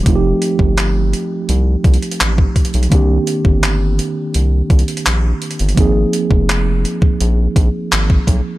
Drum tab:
HH |x---x---x---x---x---xxxxx---xxxx|x---x---x---x---x---xxxxx---xxxx|x---x---x---x---x---x---x---x---|
CP |--------x---------------x-------|--------x---------------x-------|--------x---------------x-------|
BD |o-----o-------------o-----o-o---|o-----o-------------o-----------|o-----o-------o-----o-----o-o---|